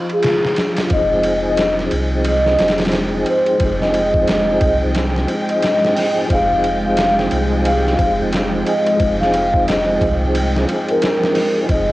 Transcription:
Already playing: string machine F3 F4
0.10 soft synth lead G#4, ride
0.23 snare, ride
0.45 snare
0.56 snare, ride
0.77 snare, ride
0.87 sub bass F1, tonewheel organ F3 C4, kick, ride
0.92 string machine G#3 G5, tonewheel organ D#4, soft synth lead D#5
0.96 tonewheel organ G#4
1.23 ride
1.48 soft synth lead D#5
1.57 snare, ride
1.79 snare
1.91 sub bass C2, ride
2.25 soft synth lead D#5, ride
2.46 snare
2.56 tonewheel organ F3 C4, ride
2.60 sub bass F1, tonewheel organ D#4, snare
2.64 tonewheel organ G#4, ride
2.70 snare
2.78 snare, ride
2.85 snare, ride
2.92 snare, ride
3.26 soft synth lead C5, ride
3.46 ride
3.57 sub bass F1, tonewheel organ F3 C4, kick, ride
3.63 tonewheel organ D#4 G#4
3.82 soft synth lead D#5, snare
3.94 ride
4.14 kick
4.28 soft synth lead D#5, snare, ride
4.61 sub bass C2, kick, ride
4.95 snare, ride
5.16 snare
5.25 tonewheel organ F3 C4, ride
5.31 tonewheel organ D#4 G#4
5.49 soft synth lead D#5, ride
5.62 snare, ride
5.85 snare
5.97 snare, open hi-hat
6.26 tonewheel organ F3 C4
6.30 sub bass F1, tonewheel organ D#4, soft synth lead F5, kick, ride
6.35 tonewheel organ G#4
6.64 ride
6.85 soft synth lead F5
6.97 snare, ride
7.19 snare
7.31 sub bass C2, ride
7.65 soft synth lead F5, ride
7.87 snare
7.95 sub bass F1, tonewheel organ F3 C4, kick, ride
8.01 tonewheel organ D#4 G#4
8.33 snare, ride
8.66 soft synth lead D#5, ride
8.86 ride
8.96 sub bass F1, tonewheel organ F3 C4, kick, ride
9.02 tonewheel organ D#4 G#4
9.20 soft synth lead F5, snare
9.34 ride
9.54 kick
9.67 soft synth lead D#5, snare, ride
10.01 sub bass C2, kick, ride
10.35 ride
10.56 snare
10.64 tonewheel organ F3 C4
10.69 tonewheel organ D#4, ride
10.73 tonewheel organ G#4
10.88 soft synth lead A#4, ride
11.02 snare, ride
11.24 snare
11.35 snare, open hi-hat
11.66 sub bass F1, tonewheel organ F3 C4, synth texture C4, string machine G#4, kick, ride
11.70 string machine G#3, tonewheel organ D#4, synth texture C5, soft synth lead D#5
11.74 tonewheel organ G#4

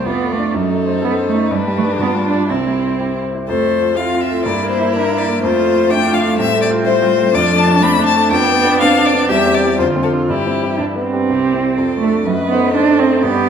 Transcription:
0.05 grand piano F2, cello B3, violin F4, viola D5
0.22 grand piano A3
0.32 cello A3
0.37 grand piano D4 D5
0.54 grand piano F#2, cello F#3, violin D#4, viola A4
0.70 grand piano A3
0.86 grand piano C5
1.02 cello B3, grand piano A4
1.19 grand piano C5
1.28 cello A3
1.35 grand piano D#4
1.51 grand piano G2, cello G3, violin D4, viola B4
1.67 grand piano G3
1.77 cello A3
1.84 grand piano D4 B4
1.99 grand piano G2, cello B3, viola F4
2.16 grand piano G3
2.25 cello D4
2.33 grand piano F4 D5
2.48 grand piano C2, cello C4, viola E4, violin E4
2.67 grand piano G3
2.83 grand piano C5
3.00 grand piano G4
3.17 grand piano C5
3.33 grand piano E4
3.48 grand piano F2, cello A3, viola A4, violin C5
3.66 grand piano A3
3.82 grand piano F4
3.97 cello C4, grand piano E4, viola F4, violin F5
4.15 grand piano F4
4.21 violin E5
4.30 grand piano A3
4.45 grand piano G2, cello A#3, viola E4, violin D5
4.63 grand piano A#3
4.70 violin C5
4.79 grand piano E4
4.93 cello A#3, grand piano D4, violin A#4
5.12 grand piano E4
5.18 violin D5
5.28 grand piano A#3
5.42 grand piano F2, cello A3, viola F4, violin C5
5.59 grand piano A3
5.74 grand piano F4
5.90 viola D4, grand piano E4, violin G5
6.06 grand piano F4
6.14 violin F5
6.23 grand piano A3
6.37 grand piano A2, cello G3, viola C4, violin E5
6.54 grand piano A3
6.62 violin D5
6.70 grand piano F4
6.85 grand piano E4, violin C5
7.02 grand piano F4
7.17 grand piano A3
7.33 grand piano F2, cello F3, viola D4, violin D5
7.51 grand piano A3
7.58 violin A5
7.67 grand piano D4
7.81 cello A3, grand piano C4, violin B5
7.99 grand piano D4
8.06 violin A5
8.16 grand piano A3
8.31 grand piano F2, cello B3, viola D4, violin G5
8.48 grand piano B3
8.56 cello B3
8.64 grand piano D4
8.80 grand piano C4, cello D4, violin F5
8.98 grand piano D4
9.06 violin D5
9.13 grand piano B3
9.29 grand piano E2, cello G3, viola G4, violin E5
9.46 grand piano C4
9.55 violin D5
9.63 grand piano E4 G4
9.79 grand piano F2, cello D3, viola F4, violin C5
9.96 grand piano C4
10.03 violin A4
10.12 grand piano D4 A4
10.28 grand piano G2, cello E3, viola E4, violin G4
10.47 grand piano C4
10.63 grand piano E4 G4
10.77 grand piano G2, cello D4
10.96 grand piano B3
11.02 cello C4
11.13 grand piano D4 G4
11.29 grand piano C2, violin E4, viola G4
11.53 grand piano C4 E4 G4
11.78 grand piano F2, viola A4, violin D5
12.00 cello A3, grand piano A3 D4 A4
12.25 grand piano F#2, cello F#3, viola B4, violin D#5
12.48 grand piano A3 D#4 C5, cello B3
12.75 grand piano A3 D#4 C5, cello D4, viola A4
12.99 grand piano A3 D#4 C5, cello C4
13.23 grand piano G2, cello B3, viola G4, violin D5

